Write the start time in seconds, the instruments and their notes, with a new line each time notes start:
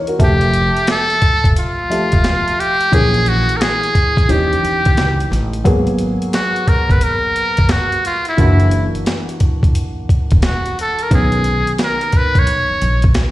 Already playing: upright piano E3 A#3 D#4
0.07 upright piano F#4 A#4, closed hi-hat
0.18 upright bass F1, upright piano F3 A3 G4 E5, kick, closed hi-hat
0.24 muted trumpet G4
0.41 closed hi-hat
0.54 closed hi-hat
0.77 closed hi-hat
0.87 muted trumpet A4, snare, closed hi-hat
1.10 closed hi-hat
1.22 kick, closed hi-hat
1.44 upright bass F1, kick, closed hi-hat
1.56 muted trumpet F4, closed hi-hat
1.90 upright piano F3 A3 G4 E5, closed hi-hat
2.12 upright bass E1, kick, closed hi-hat
2.24 snare, closed hi-hat
2.48 closed hi-hat
2.60 muted trumpet G4, closed hi-hat
2.81 closed hi-hat
2.92 upright bass A#1, upright piano E3 A#3 C#4 G#4, muted trumpet G#4, kick, closed hi-hat
3.14 closed hi-hat
3.26 muted trumpet F#4, closed hi-hat
3.49 closed hi-hat
3.57 muted trumpet A#4
3.61 muted trumpet G#4, snare, closed hi-hat
3.83 closed hi-hat
3.95 kick, closed hi-hat
4.17 upright bass A#1, kick, closed hi-hat
4.29 upright bass D#2, upright piano E3 C#4 D#4 G4, muted trumpet G4, closed hi-hat
4.53 closed hi-hat
4.63 upright bass E2, closed hi-hat
4.85 upright bass D#2, kick, closed hi-hat
4.97 upright bass C#2, snare, closed hi-hat
5.20 closed hi-hat
5.31 upright bass A1, snare, closed hi-hat
5.53 closed hi-hat
5.64 upright bass G#1, upright piano F#3 A#3 B3 G#4, kick, closed hi-hat
5.87 closed hi-hat
5.99 closed hi-hat
6.22 closed hi-hat
6.33 muted trumpet F#4, snare, closed hi-hat
6.56 closed hi-hat
6.68 muted trumpet A#4, kick, closed hi-hat
6.90 upright bass G#1, muted trumpet B4, kick, closed hi-hat
7.01 muted trumpet A#4, closed hi-hat
7.36 closed hi-hat
7.57 upright bass F#1, kick, closed hi-hat
7.69 muted trumpet F#4, snare, closed hi-hat
7.92 closed hi-hat
8.05 muted trumpet F4, closed hi-hat
8.25 muted trumpet E4, closed hi-hat
8.37 upright bass F#1, upright piano E3 A#3 D4 F#4, kick, closed hi-hat
8.60 closed hi-hat
8.71 closed hi-hat
8.95 closed hi-hat
9.06 snare, closed hi-hat
9.29 closed hi-hat
9.40 kick, closed hi-hat
9.63 upright bass F#1, kick, closed hi-hat
9.75 closed hi-hat
10.09 kick, closed hi-hat
10.31 upright bass E1, kick, closed hi-hat
10.42 muted trumpet F#4, snare, closed hi-hat
10.66 closed hi-hat
10.79 muted trumpet A4, closed hi-hat
10.99 closed hi-hat
11.03 muted trumpet A#4
11.10 upright bass B1, upright piano D#3 B3 C#4 A#4, kick, closed hi-hat
11.14 muted trumpet G#4
11.32 closed hi-hat
11.44 closed hi-hat
11.67 closed hi-hat
11.78 snare, closed hi-hat
11.84 muted trumpet A#4
12.01 closed hi-hat
12.12 kick, closed hi-hat
12.17 muted trumpet B4
12.35 upright bass B1, muted trumpet C#5, kick, closed hi-hat
12.47 closed hi-hat
12.70 muted upright bass stroke
12.82 upright bass A#1, closed hi-hat
13.02 kick, closed hi-hat
13.14 snare, closed hi-hat